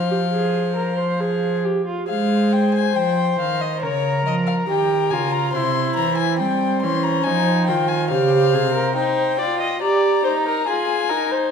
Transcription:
Already playing: cello F3, violin C5 F5
0.10 viola G4
0.32 viola G#4
0.76 viola A#4
0.98 viola C5
1.20 viola G#4
1.64 viola G4
1.87 viola F4
2.08 cello G#3, viola G#4, violin C5 F5
2.53 violin G5
2.75 violin G#5
2.95 cello F3, viola C5, violin G5
3.39 cello D#3, violin F5
3.61 violin D#5
3.82 cello C#3, violin A#4 C#5, viola A#4
4.25 cello F3, violin D#5
4.47 violin F5
4.68 cello D#3, viola G4, violin G5
5.11 cello C#3, viola F4, violin G#5
5.32 violin A#5
5.53 cello C3, viola E4, violin C5 C6
5.96 cello E3, violin A#5
6.18 violin G#5
6.39 cello G3, viola C4, violin G5
6.82 cello E3, viola C#4, violin C6
7.03 violin A#5
7.24 cello F3, viola D#4, violin G#5
7.67 cello D#3, viola F4, violin G5
7.88 violin G#5
8.10 cello C#3, viola G4, violin C5 F5
8.53 cello C3, viola G#4
8.74 viola A#4
8.96 viola D#4, violin C5 G5
9.38 viola F4, violin D5
9.60 violin D#5
9.82 viola G4, violin D5 A#5
10.24 viola D#4, violin C5
10.46 violin A#4
10.67 viola F4, violin G#4 G#5
11.10 viola D#4, violin A#4
11.31 violin C5

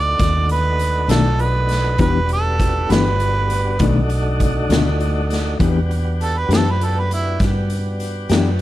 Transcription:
Already playing: fingered electric bass D2, tonewheel organ A3 D4 D#4 F#4, harmonica D5
0.19 fingered electric bass D#2, kick, snare, closed hi-hat
0.49 harmonica B4, closed hi-hat
0.79 closed hi-hat
1.08 fingered electric bass B1, clean electric guitar B2 D#3 A3 D4, harmonica A4, snare, closed hi-hat
1.39 harmonica B4, closed hi-hat
1.69 snare, closed hi-hat
1.98 fingered electric bass E1, clean electric guitar E3 B3 D4 G4, tonewheel organ G3 B3 D4 F#4, harmonica B4, kick, closed hi-hat
2.29 harmonica A4, closed hi-hat
2.60 kick, closed hi-hat
2.89 fingered electric bass G1, clean electric guitar E3 B3 D4 G4, harmonica B4, snare, closed hi-hat
3.20 closed hi-hat
3.50 closed hi-hat
3.79 fingered electric bass B1, clean electric guitar B2 D#3 A3 D4, tonewheel organ A3 D4 D#4 F#4, kick, closed hi-hat
4.10 closed hi-hat
4.40 kick, closed hi-hat
4.69 fingered electric bass D2, clean electric guitar B2 D#3 A3 D4, snare, closed hi-hat
5.00 closed hi-hat
5.30 snare, closed hi-hat
5.59 fingered electric bass E2, clean electric guitar E3 B3 D4 G4, tonewheel organ B3 D4 F#4 G4, kick, closed hi-hat
5.91 closed hi-hat
6.21 harmonica A4, closed hi-hat
6.38 harmonica B4
6.49 fingered electric bass F#2, clean electric guitar E3 B3 D4 G4, closed hi-hat
6.53 harmonica A4, snare
6.71 harmonica B4
6.81 harmonica A4, closed hi-hat
6.99 harmonica B4
7.11 harmonica E4, closed hi-hat
7.40 fingered electric bass G2, kick, snare, closed hi-hat
7.70 closed hi-hat
8.00 closed hi-hat
8.29 fingered electric bass F#2, clean electric guitar E3 B3 D4 G4, snare, closed hi-hat

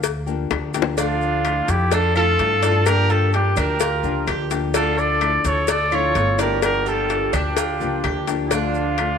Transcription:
Already playing: upright bass D2
0.03 muted nylon-string guitar stroke, cowbell, maracas
0.26 nylon-string guitar F3 A#3 D4 G4, maracas
0.50 upright bass D2, nylon-string guitar F3 A#3 D4 G4, cowbell, high bongo, claves, maracas
0.74 nylon-string guitar F3 A#3 D4 G4, cowbell, maracas
0.82 low bongo
0.97 nylon-string guitar D3 F3 A3 D4, cuban tres D4, flute D4, trumpet F4, cowbell, maracas
1.22 maracas
1.44 nylon-string guitar F3 A3 D4 E4, cowbell, claves, maracas
1.68 upright bass F2, flute E4, trumpet G4, cowbell, maracas
1.92 cuban tres D4, flute F4, trumpet A4, muted nylon-string guitar stroke, cowbell, maracas
2.15 nylon-string guitar F3 A3 D4 E4, cuban tres F4, flute F4, trumpet A4, claves, maracas
2.39 upright bass G2, nylon-string guitar F3 A3 D4 E4, cowbell, maracas
2.62 nylon-string guitar F3 A3 D4 E4, cuban tres D5, cowbell, maracas
2.86 nylon-string guitar D3 F3 A#3 D4 G4, flute G4, trumpet A#4, cowbell, claves, maracas
3.10 flute F4, cuban tres G4, trumpet A4, maracas
3.33 nylon-string guitar F3 A#3 D4 G4, flute D4, trumpet G4, cowbell, maracas
3.56 upright bass D2, cuban tres D4, flute G4, trumpet A#4, cowbell, claves, maracas
3.80 cuban tres F4, muted nylon-string guitar stroke, cowbell, maracas
4.03 upright bass C#2, nylon-string guitar F3 A#3 D4 G4, maracas
4.27 upright bass D2, nylon-string guitar F3 A#3 D4 G4, cuban tres G4, cowbell, claves, maracas
4.51 nylon-string guitar F3 A#3 D4 G4, cowbell, maracas
4.74 nylon-string guitar D3 F3 A3 D4 E4, cuban tres D4, flute F4, trumpet A4, cowbell, maracas
4.98 flute A4, trumpet D5, maracas
5.21 nylon-string guitar F3 A3 D4 E4, cowbell, claves, maracas
5.45 upright bass D2, flute A4, trumpet C#5, cowbell, maracas
5.68 cuban tres D4, flute A4, trumpet D5, muted nylon-string guitar stroke, cowbell, maracas
5.92 nylon-string guitar F3 A3 D4 E4, cuban tres F4, flute A4, trumpet C#5, claves, maracas
6.15 upright bass G1, nylon-string guitar F3 A3 D4 E4, cowbell, maracas
6.38 nylon-string guitar F3 A3 D4 E4, flute G4, trumpet A#4, cuban tres D5, cowbell, maracas
6.62 nylon-string guitar D3 F3 A#3 D4 G4, flute G4, trumpet A#4, cowbell, claves, maracas
6.86 flute F4, cuban tres G4, trumpet A4, maracas
7.09 nylon-string guitar F3 A#3 D4 G4, cowbell, maracas
7.33 upright bass D2, cuban tres D4, flute D4, trumpet G4, cowbell, claves, maracas
7.56 cuban tres F4, muted nylon-string guitar stroke, cowbell, maracas
7.80 upright bass C#2, nylon-string guitar F3 A#3 D4 G4, maracas
8.03 upright bass D2, nylon-string guitar F3 A#3 D4 G4, cuban tres G4, cowbell, claves, maracas
8.27 nylon-string guitar F3 A#3 D4 G4, cowbell, maracas
8.44 flute E4, trumpet G4
8.51 nylon-string guitar D3 F3 A3 D4, cuban tres D4, flute D4, trumpet F4, cowbell, maracas
8.74 maracas
8.98 nylon-string guitar F3 A3 D4, cowbell, claves, maracas

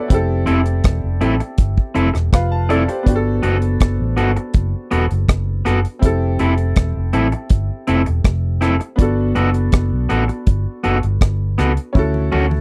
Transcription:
Already playing: grand piano B3 D4 F#4 A4 B4 C#5 D5 E5 F#5 A5
0.08 fingered electric bass F1, grand piano C4 E4 G4, kick, closed hi-hat
0.14 grand piano A4
0.46 fingered electric bass F1, clean electric guitar C4 E4 A4, closed hi-hat
0.66 closed hi-hat
0.84 fingered electric bass E1, kick, cross-stick, closed hi-hat
1.04 fingered electric bass F1
1.21 fingered electric bass A1, clean electric guitar C4 E4 A4, closed hi-hat
1.40 muted clean electric guitar stroke, closed hi-hat
1.58 fingered electric bass G1, kick, closed hi-hat
1.77 kick
1.95 fingered electric bass F1, clean electric guitar C4 E4 A4, closed hi-hat
2.15 fingered electric bass E1, muted clean electric guitar stroke, cross-stick, closed hi-hat
2.33 fingered electric bass F1, grand piano F4 B4 F5, kick, cross-stick, closed hi-hat
2.52 grand piano A5
2.69 clean electric guitar C4 E4 A4, grand piano A4 D5, closed hi-hat
2.88 grand piano G4 C5, muted clean electric guitar stroke, closed hi-hat
3.03 grand piano B3 D4, kick, closed hi-hat
3.07 fingered electric bass G1, grand piano F#4 G4
3.16 grand piano A4
3.43 fingered electric bass F#1, clean electric guitar B3 F#4 A4, closed hi-hat
3.62 closed hi-hat
3.80 fingered electric bass F#1, kick, cross-stick, closed hi-hat
4.00 fingered electric bass A1
4.17 fingered electric bass G1, clean electric guitar B3 F#4 A4, closed hi-hat
4.36 muted clean electric guitar stroke, closed hi-hat
4.54 fingered electric bass F#1, kick, closed hi-hat
4.91 fingered electric bass E1, clean electric guitar B3 F#4 A4, closed hi-hat
5.11 fingered electric bass F#1, closed hi-hat
5.29 fingered electric bass F#1, kick, cross-stick, closed hi-hat
5.65 fingered electric bass F#1, clean electric guitar B3 F#4 A4, cross-stick, closed hi-hat
5.85 closed hi-hat
5.99 fingered electric bass F1, grand piano C4 E4, kick, closed hi-hat
6.03 grand piano G4 A4
6.39 fingered electric bass F1, clean electric guitar C4 E4 A4, closed hi-hat
6.58 closed hi-hat
6.76 fingered electric bass E1, kick, cross-stick, closed hi-hat
6.97 fingered electric bass F1
7.13 fingered electric bass A1, clean electric guitar C4 E4 A4, closed hi-hat
7.32 muted clean electric guitar stroke, closed hi-hat
7.50 fingered electric bass G1, kick, closed hi-hat
7.87 fingered electric bass F1, clean electric guitar C4 E4 A4, closed hi-hat
8.06 fingered electric bass E1, muted clean electric guitar stroke, closed hi-hat
8.24 fingered electric bass F1, kick, cross-stick, closed hi-hat
8.61 clean electric guitar C4 E4 A4, cross-stick, closed hi-hat
8.81 muted clean electric guitar stroke, closed hi-hat
8.96 fingered electric bass G1, grand piano B3 D4, kick, closed hi-hat
9.00 grand piano F#4 A4
9.35 fingered electric bass F#1, clean electric guitar B3 F#4 A4, closed hi-hat
9.54 closed hi-hat
9.72 fingered electric bass F#1, kick, cross-stick, closed hi-hat
9.93 fingered electric bass B1
10.09 fingered electric bass A1, clean electric guitar B3 F#4 A4, closed hi-hat
10.28 muted clean electric guitar stroke, closed hi-hat
10.47 fingered electric bass G1, kick, closed hi-hat
10.84 fingered electric bass F#1, clean electric guitar B3 F#4 A4, closed hi-hat
11.03 fingered electric bass G1, closed hi-hat
11.21 fingered electric bass G1, kick, cross-stick, closed hi-hat
11.58 fingered electric bass C#2, clean electric guitar B3 F#4 A4, cross-stick, closed hi-hat
11.77 closed hi-hat
11.93 fingered electric bass D2, grand piano C#4 E4 F#4, kick, high tom
11.99 grand piano A4
12.14 high tom
12.32 fingered electric bass D2, clean electric guitar C#4 F#4 A4, high tom
12.51 high tom

